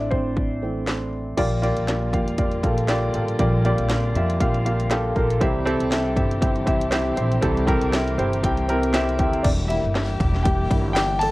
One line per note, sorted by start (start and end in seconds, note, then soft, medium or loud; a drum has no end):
0.00 1.34 A1 medium
0.00 0.63 E3 soft
0.00 0.63 A3 soft
0.00 0.13 C4 medium
0.00 0.11 D4 medium
0.00 1.39 E4 medium
0.00 0.11 C5 medium
0.00 0.12 D5 medium
0.00 1.40 E5 medium
0.11 0.61 C4 soft
0.11 1.08 C5 medium
0.11 kick medium
0.37 kick medium
0.63 0.85 E3 soft
0.63 0.85 A3 soft
0.63 0.85 C4 soft
0.87 snare medium
1.37 1.74 A#1 medium
1.37 2.09 A#2 medium
1.37 5.38 D3 medium
1.37 2.09 F3 medium
1.37 5.38 G3 medium
1.37 1.60 A#3 medium
1.37 3.38 A#3 medium
1.37 1.61 F4 medium
1.37 5.38 F4 medium
1.37 1.61 G4 medium
1.37 1.61 D5 medium
1.37 kick medium
1.37 closed hi-hat medium
1.37 crash medium
1.62 1.86 A#3 medium
1.62 1.86 F4 medium
1.62 1.86 G4 medium
1.62 1.86 D5 loud
1.62 closed hi-hat medium
1.77 2.11 A#1 medium
1.77 closed hi-hat soft
1.87 2.11 A#3 medium
1.87 2.11 F4 medium
1.87 2.11 G4 medium
1.87 2.11 D5 medium
1.87 snare medium
1.87 closed hi-hat medium
2.13 2.60 F2 medium
2.13 2.36 A#3 medium
2.13 2.36 F4 medium
2.13 2.37 G4 medium
2.13 2.37 F5 medium
2.13 kick medium
2.13 closed hi-hat soft
2.28 closed hi-hat soft
2.38 2.62 A#3 medium
2.38 2.62 F4 medium
2.38 2.62 G4 medium
2.38 2.62 D5 medium
2.38 kick medium
2.38 closed hi-hat medium
2.52 closed hi-hat soft
2.63 3.11 A#1 medium
2.63 2.87 A#3 medium
2.63 2.87 F4 medium
2.63 2.87 G4 medium
2.63 2.87 A4 medium
2.63 kick medium
2.63 closed hi-hat medium
2.78 closed hi-hat soft
2.88 3.12 A#3 loud
2.88 3.12 F4 medium
2.88 3.12 G4 medium
2.88 3.13 D5 loud
2.88 snare medium
2.88 closed hi-hat medium
3.14 3.38 A1 medium
3.14 3.38 A#3 medium
3.14 3.38 F4 medium
3.14 3.38 G4 medium
3.14 3.38 A4 medium
3.14 closed hi-hat medium
3.28 closed hi-hat soft
3.39 3.76 A#1 medium
3.39 4.11 A#2 medium
3.39 4.11 F3 medium
3.39 3.63 A#3 loud
3.39 5.39 C4 medium
3.39 3.63 F4 medium
3.39 3.63 G4 medium
3.39 3.63 D5 loud
3.39 kick medium
3.39 closed hi-hat medium
3.65 3.88 A#3 loud
3.65 3.88 F4 medium
3.65 3.88 G4 medium
3.65 3.89 D5 loud
3.65 closed hi-hat medium
3.78 4.13 A#1 medium
3.78 closed hi-hat soft
3.89 4.13 A#3 medium
3.89 4.13 F4 medium
3.89 4.13 G4 medium
3.89 4.13 F5 medium
3.89 snare medium
3.89 closed hi-hat medium
4.15 4.39 F2 medium
4.15 4.38 A#3 medium
4.15 4.39 F4 medium
4.15 4.39 G4 medium
4.15 4.39 E5 medium
4.15 closed hi-hat medium
4.30 closed hi-hat soft
4.40 5.12 A#1 medium
4.40 4.63 A#3 medium
4.40 4.64 F4 medium
4.40 4.64 G4 medium
4.40 4.64 F5 medium
4.40 kick medium
4.40 closed hi-hat medium
4.54 closed hi-hat soft
4.65 4.89 A#3 medium
4.65 4.89 F4 medium
4.65 4.89 G4 medium
4.65 4.89 F5 medium
4.65 closed hi-hat medium
4.80 closed hi-hat medium
4.90 5.13 A#3 loud
4.90 5.14 F4 medium
4.90 5.14 G4 loud
4.90 5.14 A4 loud
4.90 snare medium
4.90 closed hi-hat medium
5.15 5.41 A#1 medium
5.15 5.39 A#3 medium
5.15 5.39 F4 medium
5.15 5.39 G4 medium
5.15 5.39 A#4 medium
5.15 kick medium
5.15 closed hi-hat medium
5.30 closed hi-hat soft
5.40 5.78 C2 medium
5.40 6.13 C3 medium
5.40 9.41 E3 medium
5.40 6.13 G3 medium
5.40 9.41 G3 medium
5.40 5.64 C4 loud
5.40 9.41 C4 medium
5.40 5.64 E4 medium
5.40 5.64 G4 medium
5.40 9.41 G4 medium
5.40 5.65 E5 loud
5.40 kick medium
5.40 closed hi-hat medium
5.65 5.89 C4 loud
5.65 5.89 E4 medium
5.65 5.90 G4 medium
5.65 5.90 A4 loud
5.65 closed hi-hat medium
5.80 6.14 C2 medium
5.80 closed hi-hat soft
5.91 6.15 C4 medium
5.91 6.15 E4 medium
5.91 6.15 G4 medium
5.91 6.15 E5 medium
5.91 snare loud
5.91 closed hi-hat medium
6.16 6.64 G1 medium
6.16 6.39 C4 medium
6.16 6.40 E4 medium
6.16 6.40 G4 medium
6.16 6.40 E5 medium
6.16 kick medium
6.16 closed hi-hat medium
6.31 closed hi-hat soft
6.41 6.64 C4 medium
6.41 6.64 E4 medium
6.41 6.65 G4 medium
6.41 6.65 E5 medium
6.41 kick medium
6.41 closed hi-hat medium
6.56 closed hi-hat soft
6.66 7.14 C2 medium
6.66 6.89 C4 medium
6.66 6.90 E4 medium
6.66 6.90 G4 medium
6.66 6.90 E5 medium
6.66 kick medium
6.66 closed hi-hat medium
6.81 closed hi-hat medium
6.91 7.15 C4 medium
6.91 7.15 E4 medium
6.91 7.16 G4 medium
6.91 7.16 E5 loud
6.91 snare loud
6.91 closed hi-hat medium
7.16 7.41 A#1 medium
7.16 7.40 C4 medium
7.16 7.40 E4 medium
7.16 7.40 G4 medium
7.16 7.41 C5 medium
7.16 closed hi-hat medium
7.32 closed hi-hat soft
7.41 7.79 C2 loud
7.41 8.14 C3 medium
7.41 8.14 G3 medium
7.41 7.65 C4 medium
7.41 7.65 E4 medium
7.41 7.66 G4 medium
7.41 7.66 A4 loud
7.41 kick medium
7.41 closed hi-hat medium
7.57 closed hi-hat soft
7.67 7.91 C4 loud
7.67 7.91 E4 medium
7.67 7.91 G4 loud
7.67 7.91 A#4 loud
7.67 kick medium
7.67 closed hi-hat medium
7.81 8.15 C2 medium
7.81 closed hi-hat medium
7.93 8.16 C4 medium
7.93 8.17 E4 medium
7.93 8.17 G4 medium
7.93 8.17 E5 medium
7.93 snare loud
7.93 closed hi-hat medium
8.07 closed hi-hat soft
8.18 8.42 G1 medium
8.18 8.42 C4 medium
8.18 8.42 E4 medium
8.18 8.42 G4 medium
8.18 8.42 C5 medium
8.18 closed hi-hat medium
8.33 closed hi-hat soft
8.43 9.15 C2 loud
8.43 8.67 C4 medium
8.43 8.67 E4 medium
8.43 8.67 G4 medium
8.43 8.68 G5 medium
8.43 kick medium
8.43 closed hi-hat medium
8.57 closed hi-hat soft
8.69 8.92 C4 medium
8.69 8.92 E4 medium
8.69 8.93 G4 medium
8.69 8.93 A#4 loud
8.69 closed hi-hat medium
8.83 closed hi-hat medium
8.93 9.17 C4 loud
8.93 9.17 E4 loud
8.93 9.18 G4 loud
8.93 9.18 E5 loud
8.93 snare loud
8.93 closed hi-hat medium
9.09 closed hi-hat soft
9.19 9.43 D2 medium
9.19 9.43 C4 medium
9.19 9.43 E4 medium
9.19 9.43 G4 medium
9.19 9.43 E5 medium
9.19 kick medium
9.19 closed hi-hat medium
9.33 closed hi-hat soft
9.43 9.81 E1 loud
9.43 11.31 E3 medium
9.43 11.31 G3 medium
9.43 11.31 A#3 medium
9.43 9.51 D4 medium
9.43 11.31 G4 medium
9.43 9.49 D5 medium
9.43 kick loud
9.43 crash medium
9.43 ride medium
9.68 10.41 G3 medium
9.68 10.42 A#3 medium
9.68 10.42 E4 medium
9.68 10.47 E5 medium
9.68 ride medium
9.84 10.18 G1 medium
9.95 snare loud
9.95 ride medium
9.95 tambourine medium
10.20 10.67 E1 loud
10.20 kick medium
10.20 ride medium
10.35 snare soft
10.43 10.93 G4 medium
10.43 10.92 G5 medium
10.43 kick loud
10.43 ride medium
10.70 11.31 G1 medium
10.70 10.93 G3 soft
10.70 10.93 A#3 soft
10.70 10.93 E4 medium
10.70 kick medium
10.70 ride medium
10.93 11.20 G4 medium
10.93 11.21 G5 loud
10.93 snare loud
10.93 ride medium
10.93 tambourine medium
11.19 11.31 A4 medium
11.19 11.31 A5 loud
11.19 open hi-hat medium
11.19 ride medium